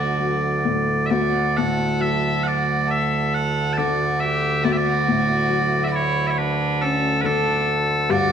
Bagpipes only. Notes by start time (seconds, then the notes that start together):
Already playing: D2 D3 D5
1.06 E5
1.10 D5
1.57 F#5
2.01 E5
2.43 F#5
2.47 D5
2.91 E5
3.34 F#5
3.73 A5
3.78 D5
4.20 E5
4.64 D5
4.72 E5
4.77 D5
5.84 E5
5.88 D5
5.96 C#5
6.27 C#5 E5
6.38 B4
6.82 A4
7.21 B4
7.26 A4
8.11 D5